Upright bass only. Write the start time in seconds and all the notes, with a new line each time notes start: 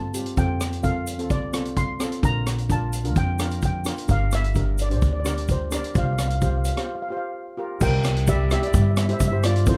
Already playing: G2
0.37 F2
1.30 C2
2.23 A#1
3.16 F2
4.09 G1
5.02 D2
5.95 C2
7.81 C2
8.74 G2
9.20 G2
9.66 F2